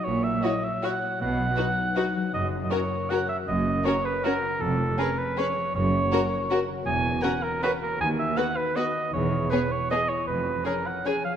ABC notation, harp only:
X:1
M:3/4
L:1/8
Q:1/4=158
K:F#mix
V:1 name="Harp"
[A,,F,F] A, E c F A, | B,, F, D B F F, | F,, C, C A F C, | F,, C C, A F C, |
^E,, ^E, C B G E, | F,, C, C A F C, | E, A, C A F A, | D, D B,2 F D |
E, E B, c G E | ^E,, ^E, C c G E, |]